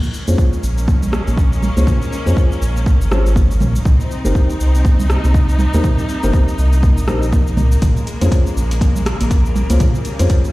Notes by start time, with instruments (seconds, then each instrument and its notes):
Already playing: string section G#3 A#3 C#4
0.03 muted conga, shaker
0.14 shaker
0.28 analog synth bass F2, felt piano C#4 F4 G#4 C5, muted conga, high conga, shaker
0.38 kick, shaker
0.53 muted conga, shaker
0.63 analog synth bass A#1, shaker
0.78 muted conga, shaker
0.88 kick, high conga, shaker
1.03 low conga, shaker
1.12 cross-stick, muted conga, high conga, shaker
1.27 analog synth bass A#1, high conga, shaker
1.37 kick, muted conga, shaker
1.53 shaker
1.62 muted conga, low conga, shaker
1.77 analog synth bass C#2, felt piano C#4 F4 G#4 C5, high conga, shaker
1.87 kick, mid tom, high conga, shaker
2.02 muted conga, shaker
2.13 shaker
2.26 analog synth bass F2, felt piano C#4 F4 G#4 C5, muted conga, high conga, shaker
2.37 kick, shaker
2.51 muted conga, shaker
2.61 analog synth bass A#1, shaker
2.76 muted conga, shaker
2.86 kick, high conga, shaker
3.01 analog synth bass G#1, shaker
3.11 felt piano C#4 F4 G#4 C5, cross-stick, muted conga, high conga, low conga, shaker
3.26 shaker
3.36 kick, muted conga, high conga, shaker
3.51 shaker
3.60 analog synth bass A#1, mid tom, muted conga, high conga, low conga, shaker
3.76 shaker
3.85 analog synth bass C2, string section C3 G3 C4 D#4, kick, mid tom, high conga, shaker
4.00 muted conga, shaker
4.11 shaker
4.25 analog synth bass G1, felt piano D#4 G4 A#4 C5, muted conga, high conga, shaker
4.35 kick, shaker
4.50 muted conga, shaker
4.60 analog synth bass C2, shaker
4.75 muted conga, shaker
4.85 kick, high conga, shaker
5.00 low conga, shaker
5.09 cross-stick, muted conga, high conga, shaker
5.24 analog synth bass C2, high conga, shaker
5.34 kick, muted conga, shaker
5.49 shaker
5.59 muted conga, low conga, shaker
5.74 analog synth bass D#2, felt piano D#4 G4 A#4 C5, high conga, shaker
5.84 string section A#3, kick, mid tom, high conga, shaker
5.98 muted conga, shaker
6.09 shaker
6.23 analog synth bass G1, felt piano D#4 G4 A#4 C5, muted conga, high conga, shaker
6.33 kick, shaker
6.48 muted conga, shaker
6.58 analog synth bass C2, shaker
6.73 muted conga, shaker
6.83 kick, high conga, shaker
6.97 analog synth bass A#1, shaker
7.08 felt piano D#4 G4 A#4 C5, cross-stick, muted conga, high conga, low conga, shaker
7.23 shaker
7.33 kick, muted conga, high conga, shaker
7.47 shaker
7.57 analog synth bass C2, mid tom, muted conga, high conga, low conga, shaker
7.72 shaker
7.82 analog synth bass A#1, string section C#3 G#3, kick, closed hi-hat, mid tom, high conga, shaker
7.97 muted conga, shaker
8.07 closed hi-hat, shaker
8.21 analog synth bass F2, felt piano C#4 F4 G#4 C5, closed hi-hat, muted conga, high conga, shaker
8.32 kick, closed hi-hat, shaker
8.46 muted conga, shaker
8.57 analog synth bass A#1, shaker
8.71 closed hi-hat, muted conga, shaker
8.81 kick, closed hi-hat, high conga, shaker
8.96 low conga, shaker
9.06 cross-stick, closed hi-hat, muted conga, high conga, shaker
9.21 analog synth bass A#1, closed hi-hat, high conga, shaker
9.31 kick, closed hi-hat, shaker
9.46 shaker
9.56 muted conga, low conga, shaker
9.70 analog synth bass C#2, felt piano C#4 F4 G#4 C5, closed hi-hat, high conga, shaker
9.80 string section G3, kick, closed hi-hat, mid tom, high conga, shaker
9.95 muted conga, shaker
10.05 closed hi-hat, shaker
10.19 analog synth bass F2, felt piano C#4 F4 G#4 C5, closed hi-hat, muted conga, high conga, shaker
10.30 kick, closed hi-hat, shaker
10.45 muted conga, shaker